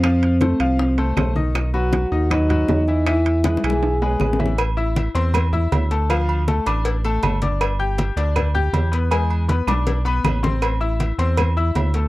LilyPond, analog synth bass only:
\new Staff \with { instrumentName = "Analog synth bass" } { \clef bass \time 4/4 \key a \minor \tempo 4 = 159 f,4. c,4. b,,4~ | b,,4. dis,4. e,4~ | e,4. b,,4. a,,4~ | a,,4. e,4. d,4~ |
d,4. a,,4. g,,4~ | g,,4. d,4. e,4~ | e,4. b,,4. a,,4~ | a,,4. e,4. d,4 | }